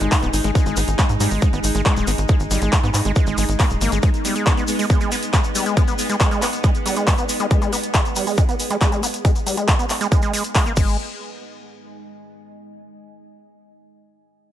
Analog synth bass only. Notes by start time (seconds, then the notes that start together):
0.01 G#1
0.23 D#1
0.34 G#1
0.44 G#1
0.66 G#1
0.77 G#1
0.88 G#1
1.10 G#2
1.20 G#2
1.31 G#1
1.53 G#1
1.64 G#1
1.75 G#1
1.97 D#1
2.07 G#1
2.18 G#1
2.40 G#1
2.51 G#1
2.62 G#1
2.83 G#2
2.94 G#2
3.05 G#1
3.27 G#1
3.38 G#1
3.49 G#1
3.70 D#1
3.81 G#1
3.92 G#1
10.77 G#1